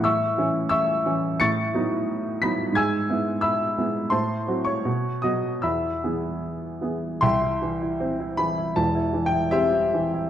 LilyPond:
<<
  \new Staff \with { instrumentName = "Upright piano" } { \time 2/4 \key e \major \tempo 4 = 80 <e'' cis''' e'''>4 <e'' cis''' e'''>4 | <cis''' a''' cis''''>4. <b'' b'''>8 | <gis'' e''' gis'''>4 <e'' b'' e'''>8 r8 | <c'' a'' c'''>8. <cis'' cis'''>8. <dis'' dis'''>8 |
<e'' b'' e'''>4 r4 | \key c \major <e'' g'' c'''>4. b''8 | \tuplet 3/2 { a''4 g''8 } <g' c'' e''>4 | }
  \new Staff \with { instrumentName = "Upright piano" } { \time 2/4 \key e \major a,8 <e cis' e'>4 <e cis' e'>8 | a,8 <fis b dis'>4 <fis b dis'>8 | gis,8 <gis b e'>4 <gis b e'>8 | a,8 <fis c' fis'>8 b,8 <fis b fis'>8 |
e,8 <e b gis'>4 <e b gis'>8 | \key c \major c,16 e'16 e16 e'16 c'16 e'16 e16 e'16 | <e,, e,>16 e'16 e16 e'16 c'16 e'16 e16 e'16 | }
>>